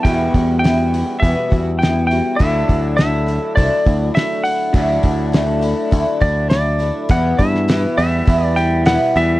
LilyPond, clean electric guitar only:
\new Staff \with { instrumentName = "Clean electric guitar" } { \clef bass \time 4/4 \key e \minor \tempo 4 = 102 <e, b, g b e' fis'>1 | <d fis a d' e'>1 | <d fis a d' e'>1 | e,4 e8 g8 e'8 g8 e8 g8 | }